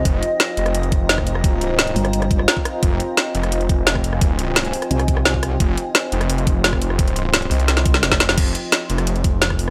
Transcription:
0.00 8.34 F4 medium
0.00 8.34 C5 medium
0.00 8.38 D#5 medium
0.00 8.34 G5 medium
0.05 0.21 F1 loud
0.05 2.82 A#5 medium
0.05 kick loud
0.05 closed hi-hat medium
0.23 closed hi-hat medium
0.40 snare loud
0.40 closed hi-hat medium
0.57 1.95 F1 loud
0.57 closed hi-hat medium
0.66 cross-stick soft
0.66 closed hi-hat soft
0.75 closed hi-hat medium
0.83 closed hi-hat soft
0.92 kick loud
0.92 closed hi-hat medium
1.09 snare loud
1.09 closed hi-hat medium
1.18 kick medium
1.18 cross-stick soft
1.27 closed hi-hat medium
1.35 cross-stick soft
1.44 kick loud
1.44 closed hi-hat medium
1.61 closed hi-hat medium
1.79 snare loud
1.79 closed hi-hat medium
1.87 closed hi-hat soft
1.96 2.47 G1 loud
1.96 open hi-hat medium
2.05 cross-stick soft
2.05 closed hi-hat soft
2.13 closed hi-hat medium
2.22 cross-stick soft
2.22 closed hi-hat soft
2.31 kick loud
2.31 closed hi-hat medium
2.39 cross-stick soft
2.48 snare loud
2.48 closed hi-hat medium
2.57 kick medium
2.65 cross-stick soft
2.65 closed hi-hat medium
2.83 2.99 F1 loud
2.83 5.59 G#5 medium
2.83 kick loud
2.83 closed hi-hat medium
3.00 closed hi-hat medium
3.17 snare loud
3.17 closed hi-hat medium
3.35 4.72 F1 loud
3.35 closed hi-hat medium
3.43 cross-stick soft
3.43 closed hi-hat soft
3.52 closed hi-hat medium
3.61 closed hi-hat soft
3.69 kick loud
3.69 closed hi-hat medium
3.87 snare loud
3.87 closed hi-hat medium
3.95 kick medium
3.95 cross-stick soft
4.04 closed hi-hat medium
4.13 cross-stick soft
4.21 kick loud
4.21 closed hi-hat loud
4.39 closed hi-hat medium
4.56 snare loud
4.56 closed hi-hat loud
4.65 closed hi-hat soft
4.73 open hi-hat medium
4.82 cross-stick soft
4.82 closed hi-hat soft
4.91 5.59 C2 loud
4.91 closed hi-hat medium
4.99 cross-stick soft
4.99 closed hi-hat soft
5.08 kick loud
5.08 closed hi-hat medium
5.17 cross-stick soft
5.25 snare loud
5.25 closed hi-hat medium
5.34 kick medium
5.43 cross-stick soft
5.43 closed hi-hat medium
5.60 5.76 F1 loud
5.60 8.37 C6 medium
5.60 kick loud
5.60 closed hi-hat loud
5.77 closed hi-hat medium
5.95 snare loud
5.95 closed hi-hat loud
6.12 7.50 F1 loud
6.12 closed hi-hat medium
6.21 cross-stick soft
6.21 closed hi-hat soft
6.30 closed hi-hat loud
6.38 closed hi-hat soft
6.47 kick loud
6.47 closed hi-hat medium
6.64 snare loud
6.64 closed hi-hat medium
6.73 kick medium
6.73 cross-stick soft
6.82 closed hi-hat medium
6.90 cross-stick soft
6.99 kick loud
6.99 closed hi-hat loud
7.08 closed hi-hat soft
7.16 closed hi-hat medium
7.34 snare loud
7.34 closed hi-hat loud
7.42 closed hi-hat soft
7.51 8.02 C2 loud
7.51 open hi-hat medium
7.60 closed hi-hat soft
7.68 snare medium
7.68 closed hi-hat medium
7.77 snare medium
7.77 closed hi-hat soft
7.86 kick loud
7.86 closed hi-hat medium
7.94 snare medium
8.03 8.36 F1 loud
8.03 snare medium
8.03 closed hi-hat medium
8.12 kick medium
8.12 snare medium
8.20 snare loud
8.20 closed hi-hat medium
8.29 snare medium
8.38 8.54 F1 loud
8.38 9.70 F4 medium
8.38 9.70 C5 medium
8.38 9.70 G5 medium
8.38 9.70 G#5 medium
8.38 kick loud
8.38 closed hi-hat loud
8.38 crash loud
8.55 closed hi-hat medium
8.72 snare loud
8.72 closed hi-hat loud
8.90 9.70 F1 loud
8.90 closed hi-hat medium
8.98 cross-stick soft
8.98 closed hi-hat soft
9.07 closed hi-hat loud
9.16 closed hi-hat soft
9.24 kick loud
9.24 closed hi-hat medium
9.42 snare loud
9.42 closed hi-hat loud
9.50 kick medium
9.50 cross-stick soft
9.59 open hi-hat medium

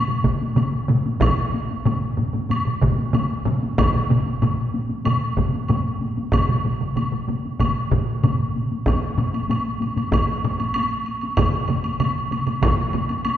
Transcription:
0.08 taiko low-mid medium
0.08 taiko mid medium
0.24 taiko medium
0.24 taiko low-mid medium
0.24 taiko mid medium
0.24 taiko high soft
0.41 taiko high soft
0.56 taiko low-mid medium
0.56 taiko mid medium
0.56 taiko high medium
0.56 high woodblock soft
0.88 taiko low-mid medium
0.88 taiko mid medium
0.88 taiko high medium
1.06 taiko high medium
1.20 taiko loud
1.20 taiko low-mid medium
1.20 taiko mid loud
1.20 taiko high medium
1.20 high woodblock medium
1.54 taiko high soft
1.71 taiko high soft
1.85 taiko low-mid medium
1.85 taiko mid medium
1.85 taiko high medium
1.85 high woodblock soft
2.17 taiko low-mid medium
2.17 taiko mid medium
2.17 taiko high soft
2.33 taiko low-mid medium
2.33 taiko mid medium
2.33 taiko high soft
2.50 taiko low-mid medium
2.50 taiko mid medium
2.50 taiko high medium
2.50 high woodblock medium
2.65 taiko low-mid medium
2.65 taiko mid medium
2.82 taiko medium
2.82 taiko low-mid loud
2.82 taiko mid medium
2.82 taiko high soft
2.98 taiko high soft
3.13 taiko low-mid medium
3.13 taiko mid loud
3.13 taiko high medium
3.13 high woodblock soft
3.45 taiko low-mid medium
3.45 taiko mid loud
3.45 taiko high soft
3.63 taiko high medium
3.78 taiko loud
3.78 taiko low-mid medium
3.78 taiko mid medium
3.78 taiko high medium
3.78 high woodblock medium
3.94 taiko low-mid medium
3.94 taiko mid medium
4.10 taiko low-mid medium
4.10 taiko mid medium
4.10 taiko high medium
4.26 taiko high soft
4.42 taiko low-mid loud
4.42 taiko mid medium
4.42 taiko high medium
4.42 high woodblock soft
4.74 taiko high medium
4.89 taiko high soft
5.05 taiko low-mid medium
5.05 taiko mid medium
5.05 taiko high medium
5.05 high woodblock medium
5.37 taiko medium
5.37 taiko low-mid medium
5.37 taiko mid medium
5.37 taiko high soft
5.54 taiko high medium
5.68 taiko low-mid medium
5.68 taiko mid loud
5.68 taiko high medium
5.68 high woodblock soft
6.01 taiko high soft
6.17 taiko high medium
6.32 taiko medium
6.32 taiko low-mid medium
6.32 taiko mid medium
6.32 taiko high medium
6.32 high woodblock medium
6.49 taiko low-mid medium
6.49 taiko mid medium
6.65 taiko low-mid medium
6.65 taiko mid medium
6.81 taiko low-mid medium
6.81 taiko mid medium
6.96 taiko low-mid medium
6.96 taiko mid medium
6.96 taiko high medium
6.96 high woodblock soft
7.12 taiko low-mid medium
7.12 taiko mid medium
7.28 taiko low-mid medium
7.28 taiko mid medium
7.28 taiko high soft
7.45 taiko high soft
7.60 taiko medium
7.60 taiko low-mid medium
7.60 taiko mid medium
7.60 taiko high medium
7.60 high woodblock medium
7.91 taiko medium
7.91 taiko low-mid loud
7.91 taiko mid medium
7.91 taiko high soft
8.24 taiko low-mid medium
8.24 taiko mid medium
8.24 taiko high medium
8.24 high woodblock soft
8.56 taiko high soft
8.71 taiko high soft
8.86 taiko medium
8.86 taiko low-mid medium
8.86 taiko high medium
8.86 high woodblock soft
9.18 taiko low-mid medium
9.18 taiko high medium
9.18 high woodblock soft
9.34 taiko high medium
9.34 high woodblock soft
9.49 taiko low-mid medium
9.49 taiko high medium
9.49 high woodblock soft
9.80 taiko low-mid medium
9.80 taiko high medium
9.80 high woodblock soft
9.96 taiko low-mid medium
9.96 taiko high medium
9.96 high woodblock soft
10.12 taiko loud
10.12 taiko low-mid medium
10.12 taiko high medium
10.12 high woodblock medium
10.44 taiko low-mid medium
10.44 taiko high soft
10.44 high woodblock soft
10.60 taiko high medium
10.60 high woodblock soft
10.74 taiko high medium
10.74 high woodblock medium
11.06 high woodblock soft
11.21 taiko high soft
11.21 high woodblock soft
11.37 taiko loud
11.37 taiko mid loud
11.37 taiko high medium
11.37 high woodblock medium
11.68 taiko mid medium
11.68 taiko high soft
11.68 high woodblock soft
11.84 taiko high soft
11.84 high woodblock soft
12.00 taiko mid medium
12.00 taiko high medium
12.00 high woodblock medium
12.31 taiko mid medium
12.31 taiko high soft
12.31 high woodblock soft
12.47 taiko mid medium
12.47 taiko high soft
12.47 high woodblock soft
12.62 taiko loud
12.62 taiko mid medium
12.62 taiko high medium
12.62 high woodblock medium
12.93 taiko mid medium
12.93 taiko high soft
12.93 high woodblock soft
13.09 taiko high medium
13.09 high woodblock soft
13.25 taiko high medium
13.25 high woodblock medium

